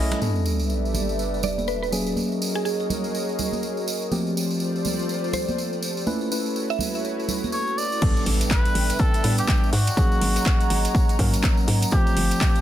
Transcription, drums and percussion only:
0.11 cross-stick, snare, closed hi-hat, low conga
0.21 tambourine, high conga
0.36 tambourine
0.46 tambourine
0.59 tambourine
0.70 tambourine
0.85 tambourine
0.94 tambourine, high conga, low conga
1.09 tambourine
1.19 tambourine
1.34 tambourine
1.43 tambourine, low conga
1.58 tambourine, high conga
1.68 tambourine
1.83 tambourine
1.92 tambourine
2.06 tambourine
2.16 tambourine, high conga
2.32 tambourine
2.42 tambourine
2.65 tambourine
2.80 tambourine
2.90 tambourine, high conga, low conga
3.04 tambourine
3.15 tambourine
3.29 tambourine
3.39 tambourine, low conga
3.52 tambourine, high conga
3.63 tambourine
3.77 tambourine
3.88 tambourine
4.02 tambourine
4.11 tambourine, high conga
4.27 tambourine
4.37 tambourine
4.50 tambourine
4.60 tambourine
4.76 tambourine
4.85 tambourine, high conga, low conga
4.99 tambourine
5.09 tambourine
5.24 tambourine
5.33 tambourine, low conga
5.48 tambourine, high conga
5.58 tambourine
5.73 tambourine
5.83 tambourine
5.97 tambourine
6.07 tambourine, high conga
6.21 tambourine
6.32 tambourine
6.46 tambourine
6.56 tambourine
6.70 tambourine
6.79 tambourine, high conga, low conga
6.95 tambourine
7.05 tambourine
7.20 tambourine
7.28 tambourine, low conga
7.44 tambourine, high conga
7.52 tambourine
7.67 tambourine
7.78 tambourine
7.92 tambourine
8.02 kick, closed hi-hat, crash, tambourine
8.17 closed hi-hat, tambourine
8.26 closed hi-hat, open hi-hat
8.41 closed hi-hat, tambourine
8.51 kick, snare, clap, closed hi-hat, tambourine
8.65 closed hi-hat, tambourine
8.75 closed hi-hat, open hi-hat
8.90 closed hi-hat, tambourine
8.99 kick, closed hi-hat, tambourine
9.14 closed hi-hat, tambourine
9.24 closed hi-hat, open hi-hat
9.38 closed hi-hat, tambourine
9.48 kick, snare, clap, closed hi-hat, tambourine
9.64 tambourine
9.73 open hi-hat
9.87 closed hi-hat, tambourine
9.97 kick, closed hi-hat, tambourine
10.12 tambourine
10.21 closed hi-hat, open hi-hat
10.36 snare, closed hi-hat, tambourine
10.46 kick, snare, clap, closed hi-hat
10.61 closed hi-hat, tambourine
10.70 closed hi-hat, open hi-hat
10.85 closed hi-hat, tambourine
10.95 kick, closed hi-hat, tambourine
11.09 closed hi-hat, tambourine
11.19 kick, closed hi-hat, open hi-hat
11.33 closed hi-hat, tambourine
11.43 kick, snare, clap, closed hi-hat, tambourine
11.57 tambourine
11.68 closed hi-hat, open hi-hat
11.82 closed hi-hat, tambourine
11.91 kick, closed hi-hat, tambourine
12.07 closed hi-hat, tambourine
12.17 closed hi-hat, open hi-hat
12.31 closed hi-hat, tambourine
12.41 kick, snare, clap, closed hi-hat, tambourine
12.55 closed hi-hat, tambourine

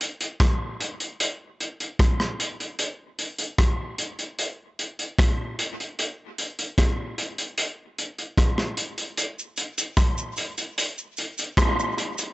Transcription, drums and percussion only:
0.01 closed hi-hat
0.21 closed hi-hat
0.40 kick, cross-stick, closed hi-hat
0.80 closed hi-hat
1.00 closed hi-hat
1.20 closed hi-hat
1.60 closed hi-hat
1.80 closed hi-hat
1.99 kick, cross-stick, closed hi-hat
2.20 cross-stick
2.40 closed hi-hat
2.60 closed hi-hat
2.79 closed hi-hat
3.19 closed hi-hat
3.38 closed hi-hat
3.58 kick, cross-stick, closed hi-hat
3.98 closed hi-hat
4.19 closed hi-hat
4.39 closed hi-hat
4.79 closed hi-hat
4.99 closed hi-hat
5.19 kick, cross-stick, closed hi-hat
5.59 closed hi-hat
5.80 closed hi-hat
5.99 closed hi-hat
6.38 closed hi-hat
6.59 closed hi-hat
6.78 kick, cross-stick, closed hi-hat
7.18 closed hi-hat
7.38 closed hi-hat
7.58 closed hi-hat
7.98 closed hi-hat
8.19 closed hi-hat
8.38 kick, cross-stick, closed hi-hat
8.58 cross-stick
8.77 closed hi-hat
8.98 closed hi-hat
9.17 closed hi-hat, cabasa
9.39 cabasa
9.57 closed hi-hat, cabasa
9.78 closed hi-hat, cabasa
9.97 kick, cross-stick, closed hi-hat, cabasa
10.18 cabasa
10.37 closed hi-hat, cabasa
10.58 closed hi-hat, cabasa
10.78 closed hi-hat, cabasa
10.98 cabasa
11.17 closed hi-hat, cabasa
11.38 closed hi-hat, cabasa
11.57 kick, cross-stick, closed hi-hat, cabasa
11.80 cabasa
11.98 closed hi-hat, cabasa
12.18 closed hi-hat, cabasa

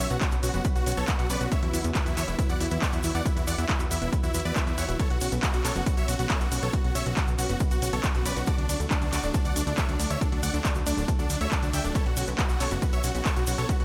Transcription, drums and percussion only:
0.00 shaker
0.10 closed hi-hat, shaker
0.21 kick, clap, closed hi-hat, shaker
0.31 closed hi-hat, shaker
0.43 open hi-hat, shaker
0.54 closed hi-hat, shaker
0.65 kick, closed hi-hat, shaker
0.76 closed hi-hat, shaker
0.86 open hi-hat, shaker
0.92 closed hi-hat
0.97 closed hi-hat, shaker
1.07 kick, clap, closed hi-hat, shaker
1.19 closed hi-hat, shaker
1.30 open hi-hat, shaker
1.41 closed hi-hat, shaker
1.52 kick, closed hi-hat, shaker
1.63 closed hi-hat
1.73 open hi-hat, shaker
1.84 closed hi-hat, shaker
1.95 kick, clap, closed hi-hat, shaker
2.06 closed hi-hat, shaker
2.17 clap, open hi-hat, shaker
2.28 closed hi-hat, shaker
2.39 kick, closed hi-hat, shaker
2.49 closed hi-hat, shaker
2.60 open hi-hat, shaker
2.66 closed hi-hat
2.71 closed hi-hat, shaker
2.82 kick, clap, closed hi-hat, shaker
2.92 closed hi-hat, shaker
3.03 open hi-hat, shaker
3.15 closed hi-hat, shaker
3.26 kick, closed hi-hat, shaker
3.37 closed hi-hat, shaker
3.47 open hi-hat, shaker
3.58 closed hi-hat, shaker
3.69 kick, clap, closed hi-hat, shaker
3.79 closed hi-hat, shaker
3.91 open hi-hat, shaker
4.02 closed hi-hat, shaker
4.13 kick, closed hi-hat, shaker
4.23 closed hi-hat, shaker
4.34 open hi-hat, shaker
4.40 closed hi-hat
4.45 closed hi-hat, shaker
4.56 kick, clap, closed hi-hat, shaker
4.67 closed hi-hat, shaker
4.78 open hi-hat, shaker
4.89 closed hi-hat, shaker
4.99 kick, closed hi-hat, ride, shaker
5.10 closed hi-hat
5.21 open hi-hat, ride, shaker
5.32 closed hi-hat, shaker
5.43 kick, clap, closed hi-hat, ride, shaker
5.53 closed hi-hat, shaker
5.65 clap, open hi-hat, ride, shaker
5.75 closed hi-hat, shaker
5.86 kick, closed hi-hat, ride, shaker
5.97 closed hi-hat, shaker
6.08 open hi-hat, ride, shaker
6.14 closed hi-hat
6.19 closed hi-hat, shaker
6.30 kick, clap, closed hi-hat, ride, shaker
6.41 closed hi-hat, shaker
6.52 open hi-hat, ride, shaker
6.62 closed hi-hat, shaker
6.73 kick, closed hi-hat, ride, shaker
6.84 closed hi-hat
6.95 open hi-hat, ride, shaker
7.06 closed hi-hat, shaker
7.17 kick, clap, closed hi-hat, ride, shaker
7.28 closed hi-hat, shaker
7.39 open hi-hat, ride, shaker
7.49 closed hi-hat, shaker
7.60 kick, closed hi-hat, ride, shaker
7.71 closed hi-hat, shaker
7.82 open hi-hat, ride, shaker
7.88 closed hi-hat
7.93 closed hi-hat, shaker
8.04 kick, clap, closed hi-hat, ride, shaker
8.15 closed hi-hat, shaker
8.26 open hi-hat, ride, shaker
8.37 closed hi-hat, shaker
8.46 kick, closed hi-hat, ride, shaker
8.58 closed hi-hat
8.69 open hi-hat, ride, shaker
8.80 closed hi-hat, shaker
8.91 kick, clap, closed hi-hat, ride, shaker
9.02 closed hi-hat, shaker
9.13 clap, open hi-hat, ride, shaker
9.23 closed hi-hat, shaker
9.34 kick, closed hi-hat, ride, shaker
9.45 closed hi-hat, shaker
9.56 open hi-hat, ride, shaker
9.61 closed hi-hat
9.67 closed hi-hat, shaker
9.78 kick, clap, closed hi-hat, ride, shaker
9.88 closed hi-hat, shaker
10.00 open hi-hat, ride, shaker
10.10 closed hi-hat, shaker
10.21 kick, closed hi-hat, ride, shaker
10.32 closed hi-hat
10.43 open hi-hat, ride, shaker
10.54 closed hi-hat, shaker
10.65 kick, clap, closed hi-hat, ride, shaker
10.75 closed hi-hat, shaker
10.86 open hi-hat, ride, shaker
10.97 closed hi-hat, shaker
11.08 kick, closed hi-hat, ride, shaker
11.19 closed hi-hat, shaker
11.30 open hi-hat, ride, shaker
11.35 closed hi-hat
11.41 closed hi-hat, shaker
11.52 kick, clap, closed hi-hat, ride, shaker
11.62 closed hi-hat, shaker
11.73 open hi-hat, ride, shaker
11.84 closed hi-hat, shaker
11.95 kick, closed hi-hat, ride, shaker
12.06 closed hi-hat
12.17 open hi-hat, ride, shaker
12.27 closed hi-hat, shaker
12.39 kick, clap, closed hi-hat, ride, shaker
12.49 closed hi-hat, shaker
12.60 clap, open hi-hat, ride, shaker
12.71 closed hi-hat, shaker
12.82 kick, closed hi-hat, ride, shaker
12.93 closed hi-hat, shaker
13.03 open hi-hat, ride, shaker
13.09 closed hi-hat
13.15 closed hi-hat, shaker
13.26 kick, clap, closed hi-hat, ride, shaker
13.36 closed hi-hat, shaker
13.47 open hi-hat, ride, shaker
13.58 closed hi-hat, shaker
13.69 kick, closed hi-hat, ride, shaker
13.80 closed hi-hat

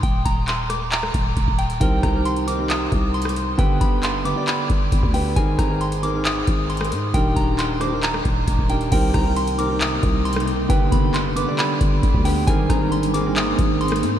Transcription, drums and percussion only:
0.03 kick, closed hi-hat
0.25 kick, closed hi-hat
0.48 clap, closed hi-hat
0.70 cross-stick, closed hi-hat
0.92 clap, closed hi-hat
1.03 cross-stick
1.14 kick, closed hi-hat
1.37 kick, closed hi-hat
1.48 kick
1.59 closed hi-hat, open hi-hat
1.70 closed hi-hat
1.81 kick, closed hi-hat
2.03 kick, cross-stick, closed hi-hat
2.25 closed hi-hat
2.36 closed hi-hat
2.48 closed hi-hat
2.70 clap, closed hi-hat
2.92 kick, closed hi-hat
3.14 closed hi-hat
3.22 cross-stick, closed hi-hat
3.29 closed hi-hat
3.36 closed hi-hat
3.59 kick, closed hi-hat
3.81 kick, closed hi-hat
4.03 clap, closed hi-hat
4.25 closed hi-hat
4.48 clap, closed hi-hat
4.70 kick, closed hi-hat
4.92 kick, closed hi-hat
5.03 kick
5.14 open hi-hat
5.36 kick, closed hi-hat
5.59 kick, cross-stick, closed hi-hat
5.81 closed hi-hat
5.92 closed hi-hat
6.03 closed hi-hat
6.25 clap, closed hi-hat
6.47 kick, closed hi-hat
6.70 closed hi-hat
6.77 cross-stick, closed hi-hat
6.85 closed hi-hat
6.92 closed hi-hat
7.14 kick, closed hi-hat
7.36 kick, closed hi-hat
7.59 clap, closed hi-hat
7.81 cross-stick, closed hi-hat
8.03 clap, closed hi-hat
8.14 cross-stick
8.25 kick, closed hi-hat
8.47 kick, closed hi-hat
8.59 kick
8.70 closed hi-hat, open hi-hat
8.81 closed hi-hat
8.92 kick, closed hi-hat, crash
9.14 kick, cross-stick, closed hi-hat
9.36 closed hi-hat
9.47 closed hi-hat
9.59 closed hi-hat
9.81 clap, closed hi-hat
10.03 kick, closed hi-hat
10.25 closed hi-hat
10.33 cross-stick, closed hi-hat
10.40 closed hi-hat
10.48 closed hi-hat
10.70 kick, closed hi-hat
10.92 kick, closed hi-hat
11.14 clap, closed hi-hat
11.37 closed hi-hat
11.59 clap, closed hi-hat
11.81 kick, closed hi-hat
12.03 kick, closed hi-hat
12.14 kick
12.25 open hi-hat
12.48 kick, closed hi-hat
12.70 kick, cross-stick, closed hi-hat
12.92 closed hi-hat
13.03 closed hi-hat
13.14 closed hi-hat
13.36 clap, closed hi-hat
13.59 kick, closed hi-hat
13.81 closed hi-hat
13.88 cross-stick, closed hi-hat
13.96 closed hi-hat
14.03 closed hi-hat

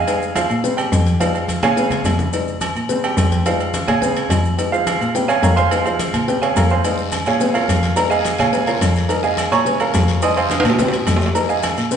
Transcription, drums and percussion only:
0.07 cowbell, high conga, low agogo, maracas
0.22 high conga, maracas
0.36 cowbell, high conga, low agogo, maracas
0.50 high conga, low agogo, maracas
0.64 cowbell, high conga, maracas
0.78 high conga, low agogo, maracas
0.92 cowbell, high conga, low agogo, maracas
1.06 cowbell, high conga, maracas
1.20 cowbell, high conga, low agogo, maracas
1.35 low agogo, maracas
1.48 cowbell, high conga, low agogo, maracas
1.63 cowbell, low conga, low agogo, maracas
1.77 cowbell, maracas
1.90 cowbell, low conga, low agogo, maracas
2.04 cowbell, low conga, low timbale, low agogo, maracas
2.19 low conga, maracas
2.33 cowbell, high conga, low agogo, maracas
2.47 high conga, maracas
2.61 cowbell, high conga, low agogo, maracas
2.76 high conga, low agogo, maracas
2.89 cowbell, high conga, maracas
3.04 high conga, low agogo, maracas
3.17 cowbell, high conga, low timbale, low agogo, maracas
3.32 cowbell, high conga, maracas
3.46 cowbell, high conga, low agogo, maracas
3.60 high conga, low agogo, maracas
3.74 cowbell, high conga, low agogo, maracas
3.88 cowbell, high conga, low conga, low agogo, maracas
4.02 cowbell, high conga, low conga, maracas
4.16 cowbell, high conga, low agogo, maracas
4.29 cowbell, high conga, low timbale, low agogo, maracas
4.44 high conga, maracas
4.59 cowbell, high conga, low agogo, maracas
4.73 high conga, maracas
4.87 cowbell, high conga, low agogo, maracas
5.01 high conga, low agogo, maracas
5.15 cowbell, high conga, maracas
5.29 high conga, low agogo, maracas
5.43 cowbell, high conga, low timbale, low agogo, maracas
5.57 cowbell, high conga, maracas
5.71 cowbell, high conga, low agogo, maracas
5.86 high conga, low agogo, maracas
5.99 cowbell, high conga, low agogo, maracas
6.14 cowbell, high conga, low conga, low agogo, maracas
6.28 cowbell, high conga, maracas
6.42 cowbell, high conga, low agogo, maracas
6.56 cowbell, high conga, low timbale, low agogo, maracas
6.70 high conga, maracas
6.84 cowbell, low agogo, long guiro, maracas
6.99 high conga, maracas
7.12 cowbell, high conga, low agogo, short guiro, maracas
7.26 high conga, low agogo, short guiro, maracas
7.41 cowbell, high conga, long guiro, maracas
7.55 high conga, low agogo, maracas
7.68 cowbell, high conga, low timbale, low agogo, short guiro, maracas
7.83 cowbell, high conga, short guiro, maracas
7.96 cowbell, low agogo, long guiro, maracas
8.11 high conga, low agogo, maracas
8.25 cowbell, high conga, low agogo, short guiro, maracas
8.38 cowbell, high conga, low conga, low agogo, short guiro, maracas
8.53 cowbell, high conga, long guiro, maracas
8.67 cowbell, high conga, low agogo, maracas
8.81 cowbell, high conga, low agogo, short guiro, maracas
8.95 high conga, short guiro, maracas
9.09 cowbell, low agogo, long guiro, maracas
9.23 high conga, maracas
9.37 cowbell, high conga, low agogo, short guiro, maracas
9.51 high conga, low agogo, short guiro, maracas
9.66 cowbell, high conga, long guiro, maracas
9.80 high conga, low agogo, maracas
9.94 cowbell, high conga, low timbale, low agogo, short guiro, maracas
10.08 cowbell, high conga, short guiro, maracas
10.22 cowbell, high conga, low agogo, long guiro, maracas
10.36 high conga, low agogo, maracas
10.50 cowbell, high conga, high timbale, low agogo, short guiro, maracas
10.60 high timbale
10.64 cowbell, high conga, low conga, low agogo, short guiro, maracas
10.70 low timbale
10.79 cowbell, high conga, low conga, low timbale, long guiro, maracas
10.88 low timbale
10.93 cowbell, high conga, low agogo, maracas
11.07 cowbell, high conga, low timbale, low agogo, short guiro, maracas
11.17 low timbale
11.21 high conga, short guiro, maracas
11.26 low timbale
11.35 cowbell, high conga, low agogo, long guiro, maracas
11.49 maracas
11.63 cowbell, high conga, low agogo, short guiro, maracas
11.77 high conga, low agogo, short guiro, maracas
11.91 cowbell, high conga, long guiro, maracas

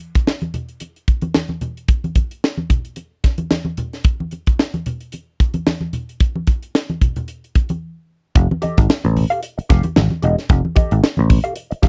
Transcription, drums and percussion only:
0.15 kick, closed hi-hat
0.27 snare, muted conga
0.41 closed hi-hat, high conga
0.54 closed hi-hat, muted conga, low conga
0.69 closed hi-hat
0.80 closed hi-hat, muted conga
0.96 closed hi-hat
1.08 kick, closed hi-hat
1.21 closed hi-hat, high conga
1.34 snare, muted conga, high conga
1.49 high conga
1.61 closed hi-hat, low conga
1.77 closed hi-hat
1.88 kick, closed hi-hat
2.04 closed hi-hat, high conga
2.15 kick, closed hi-hat, muted conga
2.31 closed hi-hat
2.44 snare
2.58 high conga
2.70 kick, closed hi-hat, muted conga, low conga
2.85 closed hi-hat
2.96 closed hi-hat, muted conga
3.24 kick, snare, closed hi-hat, muted conga
3.38 closed hi-hat, high conga
3.51 snare, muted conga, high conga
3.65 high conga
3.77 closed hi-hat, muted conga, low conga
3.93 snare, closed hi-hat
4.04 kick, closed hi-hat, muted conga
4.20 high conga
4.31 closed hi-hat, muted conga
4.47 kick, closed hi-hat
4.59 snare, muted conga
4.74 closed hi-hat, high conga
4.86 closed hi-hat, muted conga, low conga
5.01 closed hi-hat
5.12 closed hi-hat, muted conga
5.40 kick, closed hi-hat
5.54 closed hi-hat, high conga
5.67 snare, muted conga, high conga
5.81 high conga
5.93 closed hi-hat, muted conga, low conga
6.09 closed hi-hat
6.20 kick, closed hi-hat
6.36 high conga
6.47 kick, closed hi-hat, muted conga
6.63 closed hi-hat
6.75 snare
6.89 closed hi-hat, high conga
7.01 kick, closed hi-hat, muted conga, low conga
7.16 closed hi-hat, low conga
7.28 closed hi-hat
7.44 closed hi-hat
7.55 kick, closed hi-hat, muted conga
7.69 closed hi-hat, high conga
8.35 kick, closed hi-hat
8.51 high conga
8.62 closed hi-hat, muted conga, high conga
8.78 kick, closed hi-hat
8.90 snare, muted conga
9.04 closed hi-hat, high conga
9.17 open hi-hat, muted conga, low conga
9.31 closed hi-hat
9.43 closed hi-hat
9.59 closed hi-hat
9.70 kick, snare, closed hi-hat, muted conga
9.83 closed hi-hat, high conga
9.96 snare, muted conga, high conga
10.10 high conga
10.23 closed hi-hat, muted conga, low conga
10.39 snare, closed hi-hat
10.49 kick, closed hi-hat
10.65 high conga
10.76 kick, closed hi-hat, muted conga, high conga
10.91 closed hi-hat
11.04 snare
11.17 high conga
11.29 kick, open hi-hat, low conga
11.44 closed hi-hat
11.56 closed hi-hat
11.71 closed hi-hat
11.83 kick, snare, closed hi-hat, muted conga

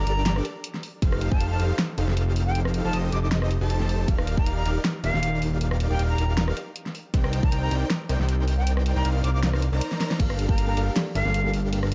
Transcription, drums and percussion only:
0.07 closed hi-hat
0.26 snare, closed hi-hat
0.36 cross-stick
0.45 closed hi-hat
0.64 closed hi-hat
0.74 snare
0.83 open hi-hat
1.02 kick, closed hi-hat
1.12 cross-stick
1.21 closed hi-hat
1.32 kick
1.40 closed hi-hat
1.60 closed hi-hat
1.79 snare, closed hi-hat
1.98 closed hi-hat
2.08 snare
2.17 closed hi-hat
2.36 open hi-hat
2.55 closed hi-hat
2.65 cross-stick
2.74 closed hi-hat
2.93 closed hi-hat
3.12 closed hi-hat
3.32 snare, closed hi-hat
3.42 cross-stick
3.51 closed hi-hat
3.70 closed hi-hat
3.80 snare
3.89 open hi-hat
4.08 kick, closed hi-hat
4.18 cross-stick
4.27 closed hi-hat
4.37 kick
4.46 closed hi-hat
4.66 closed hi-hat
4.85 snare, closed hi-hat
5.04 closed hi-hat
5.14 snare
5.23 closed hi-hat
5.42 open hi-hat
5.61 closed hi-hat
5.71 cross-stick
5.80 closed hi-hat
5.99 closed hi-hat
6.18 closed hi-hat
6.37 snare, closed hi-hat
6.48 cross-stick
6.57 closed hi-hat
6.76 closed hi-hat
6.86 snare
6.95 open hi-hat
7.14 kick, closed hi-hat
7.24 cross-stick
7.33 closed hi-hat
7.43 kick
7.52 closed hi-hat
7.71 closed hi-hat
7.90 snare, closed hi-hat
8.09 closed hi-hat
8.20 snare
8.29 closed hi-hat
8.48 open hi-hat
8.67 closed hi-hat
8.77 cross-stick
8.86 closed hi-hat
9.05 closed hi-hat
9.24 closed hi-hat
9.43 snare, closed hi-hat
9.53 cross-stick
9.62 closed hi-hat
9.81 closed hi-hat
9.92 snare
10.01 snare, open hi-hat
10.11 snare
10.20 kick, closed hi-hat, crash
10.30 cross-stick
10.39 closed hi-hat
10.49 kick
10.58 closed hi-hat
10.77 closed hi-hat
10.96 snare, closed hi-hat, crash
11.15 closed hi-hat
11.26 snare
11.34 closed hi-hat
11.54 open hi-hat
11.73 closed hi-hat, crash
11.83 cross-stick

